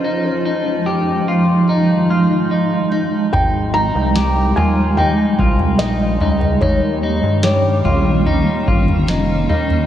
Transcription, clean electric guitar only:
\new Staff \with { instrumentName = "Clean electric guitar" } { \time 4/4 \key aes \major \tempo 4 = 73 ees'8 ees'8 g'8 f'8 ees'8 f'8 ees'8 ees'8 | ees'8 ees'8 g'8 f'8 ees'8 f'8 ees'8 ees'8 | ees'8 ees'8 g'8 f'8 ees'8 f'8 ees'8 ees'8 | }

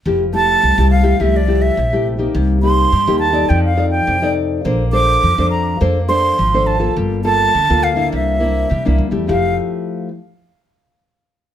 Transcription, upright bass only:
\new Staff \with { instrumentName = "Upright bass" } { \clef bass \time 4/4 \key f \major \tempo 4 = 104 f,,4 c,16 c,8. c,4 bes,,4 | c,4 g,16 ees,8. f,4 f,4 | bes,,4 f,16 f,8. f,4 aes,,4 | g,,4 d,16 d,8. c,4 c16 c,16 d,16 e,16 |
f,,8 r2. r8 | }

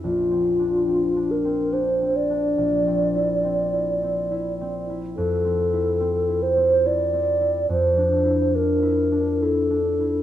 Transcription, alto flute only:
\new Staff \with { instrumentName = "Alto flute" } { \time 3/4 \key bes \lydian \tempo 4 = 70 f'4. bes'8 c''8 d''8~ | d''2~ d''8 r8 | a'4. c''8 d''4 | c''4 bes'4 a'4 | }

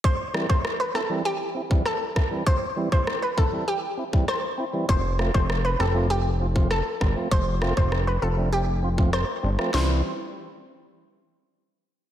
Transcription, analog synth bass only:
\new Staff \with { instrumentName = "Analog synth bass" } { \clef bass \time 4/4 \key c \major \tempo 4 = 99 r1 | r1 | f,,8. f,,8. f,,4.~ f,,16 r16 g,,16 r16 | f,,8. f,,8. f,,4.~ f,,16 r16 g,,16 r16 |
c,8 r2. r8 | }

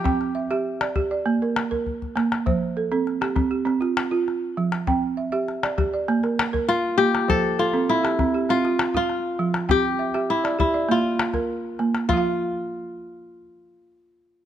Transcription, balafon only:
\new Staff \with { instrumentName = "Balafon" } { \time 4/4 \key f \major \tempo 4 = 100 << { g''8 e''16 e''8 d''8 d''8 bes'8. r4 | c''8 a'16 a'8 g'8 g'8 f'8. r4 | g''8 e''16 e''8 d''8 d''8 bes'8. r4 | c''8 a'16 a'8 g'8 g'8 f'8. r4 |
g''8 e''16 e''8 d''8 d''8 r4. r16 | <f f' f''>1 | } \\ { c'8 r16 g'8 r16 g'8 bes8 r16 bes'8 r16 bes8 | f8 r16 c'8 r16 c'8 c'8 r16 f'8 r16 f8 | c'8 r16 g'8 r16 g'8 bes8 r16 bes'8 r16 bes8 | f8 r16 c'8 r16 c'8 c'8 r16 f'8 r16 f8 |
c'8 r16 g'8 r16 g'8 bes8 r16 bes'8 r16 bes8 | r1 | } >> }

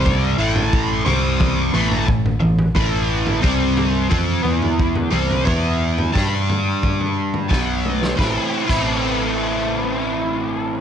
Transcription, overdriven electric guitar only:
\new Staff \with { instrumentName = "Overdriven electric guitar" } { \clef bass \time 4/4 \key a \minor \tempo 4 = 89 <c g c'>8 <a, e a>4 <c g c'>4 <a, e a>8 <a, e>8 <a, e>8 | <a, e a>4 <c g c'>4 <f c' f'>8 <e b e'>4 <c g c'>8 | <e b e'>4 <g d' g'>2 <b, fis b>4 | <a, e a c' e'>16 r8 <a, e a c' e'>2.~ <a, e a c' e'>16 | }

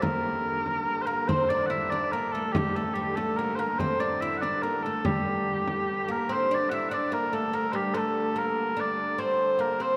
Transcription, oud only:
\new Staff \with { instrumentName = "Oud" } { \time 3/4 \key g \dorian \tempo 4 = 144 bes2~ bes8 bes8 | c'8 d'8 e'8 d'8 bes8 a8 | g8 a8 g8 a8 bes8 bes8 | c'8 d'8 e'8 d'8 bes8 a8 |
g2 r8 bes8 | c'8 d'8 e'8 d'8 bes8 a8 | bes8 g8 a4 bes8. r16 | d'4 c'4 bes8 c'8 | }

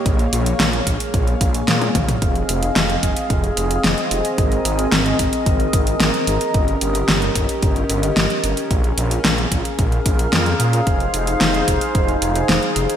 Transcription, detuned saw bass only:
\new Staff \with { instrumentName = "Detuned saw bass" } { \clef bass \time 4/4 \key f \minor \tempo 4 = 111 bes,,8 bes,,8 bes,,8 bes,,8 bes,,8 bes,,8 bes,8 bes,,8 | f,,8 f,,8 f,,8 f,,8 f,,8 f,,8 f,,8 f,,8 | aes,,8 aes,,8 aes,,8 aes,,8 aes,,8 aes,,8 aes,,8 aes,,8 | g,,8 g,,8 g,,8 g,,8 g,,8 g,,8 g,,8 g,,8 |
bes,,8 bes,,8 bes,,8 bes,,8 bes,,8 bes,,8 f,8 bes,8 | f,,8 f,,8 f,,8 f,,8 f,,8 f,,8 f,,8 f,,8 | }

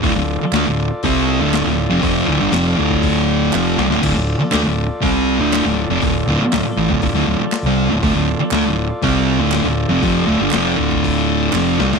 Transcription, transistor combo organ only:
\new Staff \with { instrumentName = "Transistor combo organ" } { \time 4/4 \key d \minor \tempo 4 = 120 <f' a' d''>1~ | <f' a' d''>1 | <f' a' d''>1~ | <f' a' d''>1 |
<f' a' d''>1~ | <f' a' d''>1 | }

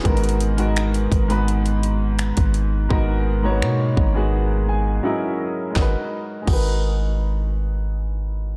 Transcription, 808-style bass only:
\new Staff \with { instrumentName = "808-style bass" } { \clef bass \time 4/4 \key gis \minor \tempo 4 = 84 gis,,4. gis,,4.~ gis,,16 gis,,8. | gis,,4 b,8 gis,,4. r4 | gis,,16 r8. gis,,2. | }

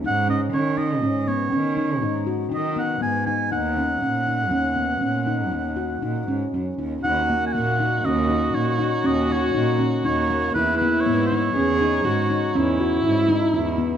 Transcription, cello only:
\new Staff \with { instrumentName = "Cello" } { \clef bass \time 7/4 \key ees \phrygian \tempo 4 = 120 aes,4 ees4 aes,4 ees4 aes,4 ees4 aes,4 | ees,4 bes,4 ees,4 bes,4 ees,4 bes,8 aes,8 ges,8 ees,8 | ees,8 r8 bes,4 ees,4 bes,8 r8 ees,4 bes,8 r8 ees,4 | fes,8 r8 aes,4 fes,4 aes,8 r8 fes,4 aes,8 r8 fes,4 | }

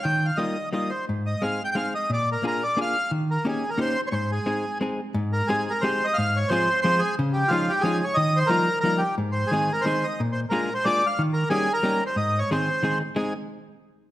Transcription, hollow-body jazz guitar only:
\new Staff \with { instrumentName = "Hollow-body jazz guitar" } { \time 3/4 \key aes \major \tempo 4 = 178 ees4 <g bes ees' f'>8 r8 <g bes ees' f'>8 r8 | aes,4 <aes c' ees' aes'>8 r8 <aes c' ees' aes'>8 r8 | bes,4 <bes d' f' aes'>8 r8 <bes d' f' aes'>8 r8 | ees4 <bes des' ees' g'>8 r8 <bes des' ees' g'>8 r8 |
aes,4 <aes c' ees' aes'>8 r8 <aes c' ees' aes'>8 r8 | aes,4 <aes c' ees' g' aes'>8 r8 <aes c' ees' g' aes'>8 r8 | aes,4 <f aes c' f' aes'>8 r8 <f aes c' f' aes'>8 r8 | des4 <f aes des' ees' f'>8 r8 <f aes des' ees' f'>8 r8 |
ees4 <f g bes ees' f'>8 r8 <f g bes ees' f'>8 r8 | aes,4 <ees aes c' ees' aes'>8 r8 <ees aes c' ees' aes'>8 r8 | bes,4 <aes bes d' f' aes'>8 r8 <aes bes d' f' aes'>8 r8 | ees4 <g bes des' ees' g'>8 r8 <g bes des' ees' g'>8 r8 |
aes,4 <ees aes c' ees' aes'>8 r8 <ees aes c' ees' aes'>8 r8 | <aes c' ees' aes'>8 r2 r8 | }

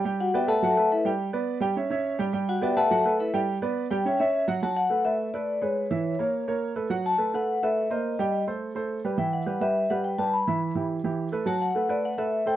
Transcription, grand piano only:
\new Staff \with { instrumentName = "Grand piano" } { \time 4/4 \key d \major \tempo 4 = 210 <g g' g''>4 <b b' d''>8 <a a' b'>8 <fis fis' fis''>8 <a a' b'>4 <g g' g''>8~ | <g g' g''>8 <b b' d''>4 <g g' g''>8 <cis' cis'' e''>8 <cis' cis'' e''>4 <g g' g''>8 | <g g' g''>4 <b b' d''>8 <a a' b'>8 <fis fis' fis''>8 <a a' b'>4 <g g' g''>8~ | <g g' g''>8 <b b' d''>4 <g g' g''>8 <cis' cis'' e''>8 <cis' cis'' e''>4 <fis fis' fis''>8 |
<fis fis' fis''>4 <a a' b'>8 <a a' b'>4 <a a' b'>4 <gis gis' b'>8~ | <gis gis' b'>8 <e e' e''>4 <bes bes' cis''>4 <bes bes' des''>4 <a a' b'>8 | <fis fis' fis''>4 <a a' b'>8 <a a' b'>4 <a a' b'>4 <bes bes' c''>8~ | <bes bes' c''>8 <g g' g''>4 <a a' c''>4 <a a' c''>4 <g g' b'>8 |
<e e' e''>4 <g g' b'>8 <g g' b'>4 <g g' b'>4 <g g' b'>8~ | <g g' b'>8 <e e' e''>4 <e e' g'>4 <e e' g'>4 <a a' b'>8 | <fis fis' fis''>4 <a a' b'>8 <a a' b'>4 <a a' b'>4 <a a' c''>8 | }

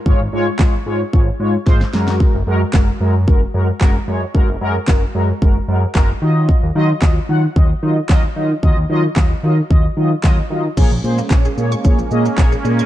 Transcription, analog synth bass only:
\new Staff \with { instrumentName = "Analog synth bass" } { \clef bass \time 4/4 \key bes \minor \tempo 4 = 112 aes,,16 aes,,16 aes,8 aes,,8 aes,8 aes,,8 aes,8 aes,,8 ges,8~ | ges,16 ges,,16 ges,8 ges,,8 ges,8 ges,,8 ges,8 ges,,8 ges,8 | ges,,16 ges,,16 ges,8 ges,,8 ges,8 ges,,8 ges,8 ges,,8 ees8~ | ees16 ees,16 ees8 ees,8 ees8 ees,8 ees8 ees,8 ees8 |
ees,16 ees,16 ees8 ees,8 ees8 ees,8 ees8 ees,8 ees8 | bes,,16 bes,,16 bes,8 bes,,8 bes,8 bes,,8 bes,8 bes,,8 bes,8 | }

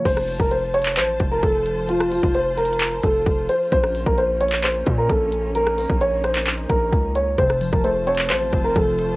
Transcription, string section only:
\new Staff \with { instrumentName = "String section" } { \time 4/4 \key f \phrygian \tempo 4 = 131 << { <f c'' a''>1~ | <f c'' a''>1 | bes1~ | bes1 |
<f c'' a''>1 | } \\ { f'1~ | f'1 | des'1 | ees'1 |
f'1 | } >> }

